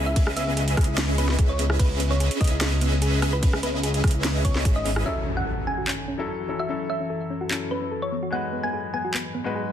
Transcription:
Already playing: C#2
0.06 E4 E5
0.16 B3 C#4 G#4 B4 D#5 E5, kick, closed hi-hat, ride
0.27 cross-stick
0.37 B3 E5, closed hi-hat
0.47 B3
0.57 G#4, closed hi-hat
0.68 closed hi-hat
0.77 C#2 B3 C#4 G#4, kick, cross-stick, closed hi-hat
0.81 closed hi-hat
0.84 E4, closed hi-hat
0.98 B3, snare, closed hi-hat, ride
1.18 B3 C#4 G#4 B4 D#5 E5, closed hi-hat
1.29 B3 C#4 G#4 B4 D#5 E5, snare
1.39 C#2 G#4, kick, closed hi-hat
1.49 C#5
1.59 B3, closed hi-hat
1.70 E4, cross-stick
1.79 C#2 B3 C#4 G#4 B4 D#5, kick, closed hi-hat, ride
2.00 B3, closed hi-hat
2.11 B3 C#5
2.20 G#4, closed hi-hat
2.31 closed hi-hat
2.41 C#2 B3 C#4 G#4 B4 D#5 E5, kick, closed hi-hat
2.44 closed hi-hat
2.47 E4, closed hi-hat
2.61 B3, snare, closed hi-hat, ride
2.81 B3, closed hi-hat
2.92 B3
3.02 G#4, closed hi-hat
3.22 B3 C#4 G#4 B4 D#5 E5, cross-stick, closed hi-hat
3.33 E4 B4
3.43 B3 C#4 G#4 B4 D#5 E5, kick, closed hi-hat, ride
3.53 cross-stick
3.63 B3 B4, closed hi-hat
3.74 B3
3.83 G#4, closed hi-hat
3.94 closed hi-hat
4.04 C#2 B3 C#4 G#4 B4 D#5, kick, cross-stick, closed hi-hat
4.08 closed hi-hat
4.11 E4, closed hi-hat
4.24 B3, snare, closed hi-hat, ride
4.45 B3 C#5, kick, closed hi-hat
4.55 B3 C#4 G#4 B4 D#5 E5, snare
4.65 G#1 G#4, kick, closed hi-hat
4.76 D#5
4.85 G#1 B3, open hi-hat
4.96 E4, cross-stick
5.04 F#2 E3 F#3 C#4 E4 A4 E5, impact
5.08 A4
5.26 C#4
5.37 C#4 F#5
5.47 A4
5.67 C#4 G#5
5.78 F#4
5.87 C#4, clap
6.08 C#4
6.18 F#3 C#4 E4 A4
6.28 A4
6.48 F#3 C#4 E4 A4
6.59 F#4 E5
6.68 F#3 C#4 E4 A4
6.89 C#4 E5
7.00 C#4
7.10 A4
7.30 C#4
7.41 F#4
7.50 F#3 C#4 E4 A4, clap
7.71 C#4 B4
7.82 C#4
7.91 A4
8.02 C#5
8.12 G#2 F#3 B3 B4
8.23 F#4
8.31 G#3 B3 D#4 F#4 F#5
8.35 B4
8.53 B3
8.63 B3 G#5
8.73 G#4
8.94 B3 G#5
9.04 F#4
9.14 B3, clap
9.35 B3
9.44 G#3 B3 D#4 F#4 B4
9.55 G#4

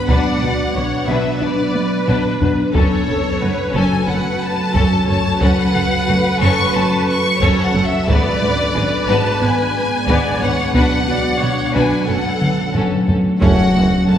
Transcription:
Already playing: B3 D4 B4
0.08 B1 B2 F#3 B3 D4 B4 D5 F#5, taiko
0.42 B1 B2 D4 F#4 B4
0.75 B1 B2 B3 D4 F#4 C#5
1.08 B1 B2 B3 D4 B4 E5
1.41 B1 B2 D4 B4 D5
1.75 taiko high
2.07 B1 B2 B3 D4 B4, taiko low-mid
2.41 B1 B2 D4 B4, taiko low
2.74 F#1 F#2 F#3 C#4 F#4 A4 C#5, taiko
3.07 F#1 F#2 C#4 A4
3.41 F#1 F#2 A3 F#4 B4
3.74 F#1 F#2 F#3 C#4 A4 G#5
4.07 F#1 F#2 A3 C#4 A4 B4 F#5
4.42 A5
4.74 F#1 F#2 F#3 C#4 A4, taiko
5.08 F#1 F#2 A3 C#4 A4 C#5 A5
5.41 F#1 F#2 F#3 C#4 A4 B4 F#5, taiko
5.75 F#1 F#2 C#4 A4
6.08 F#1 F#2 A3 F#4
6.41 F#1 F#2 F#3 C#4 A4 C#6
6.74 F#1 F#2 A3 C#4 A4 A5
7.09 C#6
7.41 F#1 F#2 F#3 C#4 A4 C#5, taiko
7.64 F#5
7.75 F#1 F#2 A3 C#4 A4
7.86 E5
8.07 G#1 G#2 G#3 B3 D4 B4 D5, taiko
8.41 G#1 G#2 B3 D4 B4
8.75 G#1 G#2 G#3 B3 G#4 B4
9.07 G#1 G#2 G#3 B3 B4 A5
9.41 G#1 G#2 B3 B4 G#5
10.07 G#1 G#2 G#3 B3 B4 D5, taiko
10.40 G#1 G#2 B3 B4 C#5 F#5
10.74 B1 B2 F#3 B3 D4 B4 F#5, taiko
11.07 B1 B2 D4 F#4 B4 D5
11.41 B1 B2 B3 D4 F#4 C#5
11.74 B1 B2 B3 D4 B4 G#5
12.08 F#1 F#2 A3 C#4 A4 F#5
12.42 taiko mid
12.74 F#1 F#2 F#3 C#4 A4, taiko low-mid
13.08 F#1 F#2 A3 C#4 A4, taiko low
13.41 F#1 F#2 C#3 F#3 A3 C#4 F#4 A4 F#5, taiko, impact
13.75 F#1 F#2 G#3 A3 B3
14.08 F#1 F#2 A3 C#4 A4 A5

